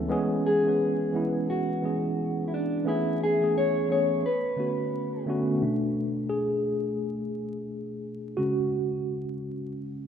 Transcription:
0.00 0.12 C#2 medium
0.00 0.08 E3 medium
0.00 0.11 A3 medium
0.00 0.10 B3 medium
0.00 0.11 C#4 medium
0.00 0.11 E4 medium
0.00 0.11 A4 medium
0.00 0.11 B4 medium
0.08 0.45 E3 loud
0.08 0.45 G#3 loud
0.08 0.46 B3 loud
0.08 0.46 C#4 loud
0.08 0.46 G#4 loud
0.47 1.49 G#4 medium
0.65 1.01 E3 medium
0.65 1.01 G#3 medium
0.65 1.02 B3 medium
0.65 1.02 C#4 medium
0.65 1.02 B4 medium
1.13 1.64 E3 medium
1.13 1.64 G#3 medium
1.13 1.64 B3 medium
1.13 1.65 C#4 medium
1.13 1.65 E4 medium
1.50 2.43 F#4 medium
1.82 2.53 E3 medium
1.82 2.54 G#3 medium
1.82 2.54 B3 medium
1.82 2.55 C#4 medium
1.82 2.55 G#4 medium
2.48 2.52 E4 medium
2.54 2.85 D4 medium
2.84 3.21 E3 medium
2.84 3.21 A3 medium
2.84 3.21 B3 medium
2.84 3.22 C#4 medium
2.84 3.22 G#4 loud
2.88 3.19 E4 loud
3.23 3.54 G#4 loud
3.40 3.76 E3 medium
3.40 3.76 A3 medium
3.40 3.77 B3 medium
3.40 3.77 C#4 medium
3.40 3.78 G#4 medium
3.58 3.88 C#5 loud
3.88 4.23 E3 medium
3.88 4.24 A3 medium
3.88 4.24 B3 medium
3.88 4.24 C#4 medium
3.88 4.25 G#4 medium
3.88 4.25 C#5 medium
4.26 5.24 B4 medium
4.57 5.08 D3 medium
4.57 5.08 A3 medium
4.57 5.09 B3 medium
4.57 5.09 C#4 medium
4.57 5.09 F#4 medium
5.26 5.53 D3 medium
5.26 5.53 A3 medium
5.26 5.54 B3 medium
5.26 5.54 C#4 medium
5.26 5.55 F#4 medium
5.61 8.33 B2 soft
5.61 8.34 A3 soft
5.61 8.34 D4 medium
6.29 8.43 G#4 medium
8.37 9.37 C#3 medium
8.37 9.37 G#3 soft
8.37 9.37 C#4 medium
8.37 10.07 F#4 medium

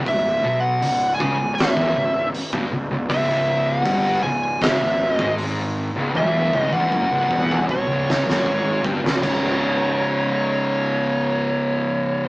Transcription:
0.05 0.41 C#1 medium
0.05 0.35 C#2 medium
0.05 0.65 E5 medium
0.05 kick medium
0.05 open hi-hat medium
0.43 0.78 B1 loud
0.43 0.80 B2 medium
0.60 1.14 F#5 medium
0.82 1.16 C#1 medium
0.82 1.12 C#2 medium
0.82 open hi-hat medium
1.15 1.52 G#5 medium
1.19 1.37 C#2 medium
1.19 1.37 C#3 loud
1.19 kick loud
1.38 1.73 C#1 medium
1.38 1.69 C#2 medium
1.55 2.28 E5 medium
1.55 open hi-hat medium
1.60 snare loud
1.76 1.94 E1 medium
1.76 1.94 E2 loud
1.76 kick loud
1.96 2.30 C#1 medium
1.96 2.25 C#2 medium
2.34 open hi-hat medium
2.53 2.70 G1 medium
2.53 2.70 G2 medium
2.53 kick loud
2.70 2.88 C#1 medium
2.70 2.90 C#2 medium
2.90 3.08 C#1 medium
2.90 3.09 C#2 medium
3.10 3.81 C#1 medium
3.10 3.84 C#2 loud
3.10 3.68 E5 medium
3.10 kick loud
3.10 open hi-hat medium
3.66 4.22 F#5 medium
3.85 4.21 G1 loud
3.85 4.22 G2 loud
3.85 kick loud
3.85 open hi-hat medium
4.22 4.58 C#1 medium
4.22 4.54 C#2 medium
4.22 4.62 G#5 medium
4.61 4.79 C#1 medium
4.61 4.79 C#2 loud
4.61 5.12 E5 medium
4.61 kick loud
4.61 snare loud
4.61 open hi-hat medium
4.80 5.16 C#1 medium
4.80 5.11 C#2 medium
5.12 5.34 D#5 medium
5.19 5.91 G#1 medium
5.19 5.94 G#2 medium
5.19 kick loud
5.38 open hi-hat medium
5.95 6.13 C#1 loud
5.95 6.13 C#2 medium
6.14 6.50 E1 medium
6.14 6.52 E2 loud
6.14 6.59 E5 loud
6.14 high tom medium
6.53 6.71 C#1 medium
6.53 6.71 C#2 medium
6.53 kick medium
6.59 6.75 D#5 loud
6.72 6.90 E1 medium
6.72 6.90 E2 medium
6.72 7.64 F#5 loud
6.72 kick medium
6.92 7.09 F#1 medium
6.92 7.09 F#2 loud
6.92 kick medium
7.10 7.28 C#1 medium
7.10 7.29 C#2 medium
7.30 7.66 E1 medium
7.30 7.67 E2 loud
7.30 kick medium
7.51 mid tom medium
7.69 7.86 B1 medium
7.69 7.87 B2 loud
7.69 8.81 C#5 medium
7.69 kick medium
7.87 8.23 C#1 medium
7.87 8.25 C#2 loud
8.10 snare medium
8.25 8.43 F#1 medium
8.25 8.44 F#2 medium
8.30 snare medium
8.44 8.82 G#1 medium
8.44 8.82 G#2 loud
8.44 kick medium
8.83 9.02 G1 medium
8.83 9.01 G2 loud
8.83 kick loud
9.02 9.21 C#1 loud
9.02 9.19 C#2 medium
9.06 snare medium
9.20 12.28 C#1 medium
9.20 12.28 C#2 medium
9.20 12.28 G#2 medium
9.20 12.28 C#5 medium
9.20 kick loud
9.20 crash medium
9.24 12.28 C#3 loud

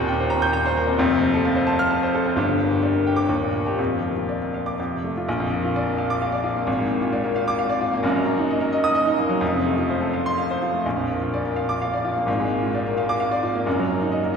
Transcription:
0.00 0.94 D#1 medium
0.00 0.94 D#2 loud
0.00 1.00 A#2 medium
0.00 0.88 C4 medium
0.00 0.14 A#4 medium
0.08 0.25 G5 medium
0.20 0.37 C5 medium
0.30 0.48 A#5 medium
0.42 0.60 G6 loud
0.53 0.71 A#5 medium
0.65 0.83 C5 medium
0.77 0.95 A#4 medium
0.88 0.99 C4 medium
0.98 2.32 F1 loud
0.98 2.32 F2 loud
1.11 1.28 C3 medium
1.22 1.40 C4 medium
1.34 1.51 A4 medium
1.45 1.63 F5 medium
1.56 1.74 C5 medium
1.67 1.85 A5 medium
1.79 1.97 F6 loud
1.91 2.09 A5 medium
2.03 2.20 C5 medium
2.15 2.32 A4 medium
2.26 2.36 C4 medium
2.36 3.26 G1 medium
2.36 3.26 G2 medium
2.50 2.66 D3 medium
2.60 2.78 A#3 medium
2.71 2.89 G4 medium
2.83 3.01 D5 medium
2.95 3.12 A#4 medium
3.07 3.25 G5 medium
3.16 3.28 D6 medium
3.29 3.77 D#2 medium
3.42 3.61 A#2 medium
3.54 3.73 A#3 medium
3.66 3.79 G4 medium
3.78 4.75 F1 medium
3.78 4.75 F2 medium
3.92 4.11 F3 medium
4.05 4.24 A#3 soft
4.16 4.36 F4 soft
4.29 4.48 D5 medium
4.42 4.61 A#4 soft
4.54 4.73 F5 medium
4.66 4.78 D6 medium
4.80 5.27 F2 medium
4.92 5.11 C3 medium
5.04 5.23 A3 medium
5.17 5.28 F4 medium
5.28 6.64 A#1 medium
5.40 5.58 F2 medium
5.52 5.70 A#3 medium
5.64 5.82 F4 medium
5.76 5.94 D5 medium
5.87 6.05 A#4 medium
5.98 6.16 F5 medium
6.10 6.28 D6 loud
6.22 6.40 F5 medium
6.32 6.51 D5 medium
6.43 6.62 F4 medium
6.56 6.68 A#3 medium
6.67 7.99 G#1 medium
6.79 6.97 G#2 medium
6.91 7.09 A#3 medium
7.02 7.20 F4 medium
7.13 7.31 D5 medium
7.24 7.42 A#4 medium
7.36 7.54 F5 medium
7.48 7.65 D6 loud
7.59 7.76 F5 medium
7.69 7.87 D5 medium
7.81 7.99 F4 medium
7.93 8.04 A#3 medium
8.03 9.37 F#1 medium
8.03 9.38 F#2 loud
8.15 8.33 F#3 medium
8.26 8.44 A#3 medium
8.38 8.56 D#4 medium
8.51 8.68 D#5 medium
8.61 8.78 A#4 medium
8.73 8.90 D#5 medium
8.84 9.02 D#6 loud
8.95 9.13 D#5 medium
9.06 9.25 D#4 medium
9.17 9.36 A#3 medium
9.29 9.41 F#3 medium
9.40 10.80 F1 medium
9.40 10.81 F2 medium
9.54 9.73 C3 medium
9.66 9.85 A3 medium
9.78 9.97 F4 medium
9.90 10.09 C5 medium
10.01 10.20 A4 medium
10.13 10.32 F5 medium
10.26 10.45 C6 loud
10.38 10.56 F5 medium
10.50 10.69 C5 medium
10.62 10.81 F4 medium
10.74 10.85 A3 medium
10.86 12.24 A#1 medium
10.96 11.16 F2 medium
11.09 11.28 A#3 medium
11.22 11.40 F4 medium
11.34 11.52 D5 medium
11.45 11.64 A#4 medium
11.56 11.75 F5 medium
11.69 11.88 D6 medium
11.82 12.00 F5 medium
11.94 12.12 D5 medium
12.05 12.23 F4 medium
12.17 12.28 A#3 medium
12.26 13.61 G#1 medium
12.26 13.62 G#2 medium
12.40 12.58 G#3 medium
12.51 12.70 A#3 medium
12.62 12.81 F4 medium
12.75 12.93 D5 medium
12.87 13.04 A#4 medium
12.97 13.16 F5 medium
13.09 13.27 D6 loud
13.20 13.38 F5 medium
13.31 13.50 D5 medium
13.43 13.61 F4 medium
13.55 13.66 A#3 medium
13.66 14.37 F#1 medium
13.66 14.37 F#2 medium
13.79 13.96 F#3 medium
13.90 14.07 A#3 medium
14.01 14.19 D#4 medium
14.12 14.30 D#5 medium
14.23 14.37 A#4 medium

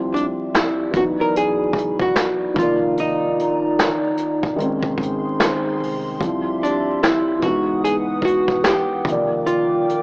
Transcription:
0.00 0.32 D2 loud
0.00 0.94 F3 medium
0.00 0.94 G3 medium
0.00 0.95 C4 medium
0.00 0.96 E4 medium
0.00 0.93 G4 medium
0.00 2.54 D5 medium
0.00 0.93 E5 medium
0.00 0.91 C6 medium
0.14 0.25 D4 medium
0.14 closed hi-hat medium
0.55 0.96 E4 medium
0.55 finger snap medium
0.55 snare medium
0.55 closed hi-hat medium
0.91 1.71 C#2 medium
0.91 2.51 E3 medium
0.91 2.52 F#3 medium
0.91 6.17 D#4 medium
0.91 2.54 F#4 medium
0.91 2.54 B5 medium
0.91 kick loud
0.91 closed hi-hat medium
0.96 2.54 B3 medium
0.96 2.55 D#4 medium
0.96 1.03 F#4 medium
1.21 1.36 A#4 medium
1.36 1.96 G#4 loud
1.36 closed hi-hat medium
1.73 2.11 C#2 medium
1.73 kick medium
1.78 closed hi-hat medium
1.99 2.53 F#4 medium
1.99 kick medium
2.16 finger snap medium
2.16 snare medium
2.16 closed hi-hat medium
2.54 3.33 C2 loud
2.54 4.54 D#3 medium
2.54 4.55 F3 medium
2.54 4.57 F4 medium
2.54 4.57 D5 medium
2.54 4.57 A#5 medium
2.54 kick loud
2.59 4.56 A#3 medium
2.59 2.99 F4 medium
2.59 4.58 D5 medium
2.59 closed hi-hat medium
2.97 5.37 D#4 medium
2.97 closed hi-hat medium
3.39 closed hi-hat medium
3.79 finger snap medium
3.79 snare loud
3.79 closed hi-hat medium
4.17 closed hi-hat medium
4.43 kick loud
4.56 4.96 A#1 loud
4.56 6.16 D#3 medium
4.56 6.18 G#3 medium
4.56 6.19 G#4 medium
4.56 6.19 C5 medium
4.56 7.39 C6 medium
4.56 closed hi-hat medium
4.62 6.19 C4 medium
4.62 6.20 C#4 medium
4.83 kick medium
4.98 5.36 G#1 medium
4.98 kick medium
5.03 closed hi-hat medium
5.40 finger snap medium
5.40 snare loud
5.40 closed hi-hat medium
5.80 6.17 C2 medium
5.80 open hi-hat soft
6.20 6.81 D2 loud
6.20 7.42 F3 medium
6.20 7.43 G3 medium
6.20 7.44 C4 medium
6.20 7.42 G4 medium
6.20 7.42 E5 medium
6.20 kick loud
6.20 closed hi-hat medium
6.24 7.44 E4 medium
6.63 7.03 D4 medium
6.63 closed hi-hat medium
7.03 7.44 E4 loud
7.03 finger snap medium
7.03 snare loud
7.03 closed hi-hat medium
7.39 8.20 C#2 medium
7.39 9.00 E3 medium
7.39 9.01 G#3 medium
7.39 7.84 F#4 medium
7.39 9.03 B4 medium
7.39 9.03 F#5 medium
7.39 9.03 D#6 medium
7.39 kick loud
7.39 closed hi-hat medium
7.45 9.02 B3 medium
7.45 9.04 D#4 medium
7.84 7.95 G#4 loud
7.84 closed hi-hat medium
8.22 8.60 C#2 medium
8.22 8.66 F#4 loud
8.22 kick medium
8.27 closed hi-hat medium
8.48 kick medium
8.64 9.42 G4 loud
8.64 finger snap medium
8.64 snare loud
8.64 closed hi-hat medium
9.04 9.82 C2 loud
9.04 9.12 D3 medium
9.04 10.03 F3 medium
9.04 10.03 A#4 medium
9.04 10.03 D5 medium
9.04 10.03 G5 medium
9.04 10.03 D6 medium
9.04 kick loud
9.08 10.03 D#3 medium
9.08 10.03 A#3 medium
9.08 10.03 D5 medium
9.08 closed hi-hat medium
9.46 10.03 F4 loud
9.46 closed hi-hat medium
9.89 closed hi-hat medium

